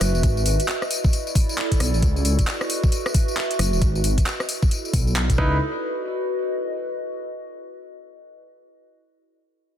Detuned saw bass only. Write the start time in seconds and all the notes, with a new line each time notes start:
0.01 F#1
0.15 E1
0.23 G#1
0.46 G#1
1.80 B1
1.94 A1
2.03 C#2
2.25 C#2
3.59 F#1
3.73 E1
3.82 G#1
4.04 G#1
4.93 B1
5.38 C#2